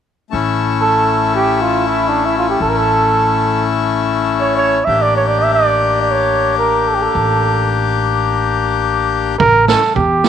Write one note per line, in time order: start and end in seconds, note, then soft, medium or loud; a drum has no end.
0.31 2.56 A1 medium
0.31 4.82 A3 medium
0.31 4.83 C#4 medium
0.31 4.84 E4 medium
0.81 1.32 A4 medium
1.35 1.63 G4 medium
1.62 1.88 F4 medium
1.87 2.10 E4 medium
2.08 2.27 D4 medium
2.25 2.37 E4 medium
2.38 2.48 F4 medium
2.49 2.61 G4 medium
2.60 4.83 A1 medium
2.60 2.70 A4 medium
2.69 2.79 A#4 medium
2.77 3.82 A4 medium
4.40 4.56 C#5 medium
4.57 4.86 C#5 medium
4.85 7.10 A1 medium
4.85 9.35 A#3 medium
4.85 9.36 D4 medium
4.85 5.03 E5 medium
4.89 9.37 G4 medium
5.02 5.15 D5 medium
5.16 5.29 C#5 medium
5.28 5.40 D5 medium
5.39 5.53 E5 medium
5.54 5.99 D5 medium
6.02 6.12 D5 medium
6.11 6.57 C#5 medium
6.58 6.90 A#4 medium
6.88 6.96 A4 medium
6.94 7.03 G4 soft
7.02 7.75 A4 medium
7.15 9.36 A1 medium
9.40 9.74 A1 medium
9.40 9.66 A#4 loud
9.40 kick loud
9.67 9.82 A3 medium
9.67 9.82 C#4 medium
9.67 9.82 E4 medium
9.67 9.94 A4 medium
9.67 snare medium
9.82 snare soft
9.95 10.29 E2 medium
9.95 10.29 G4 medium
9.95 kick medium
10.24 10.29 A3 medium
10.24 10.29 C#4 medium
10.24 10.29 E4 medium
10.24 snare medium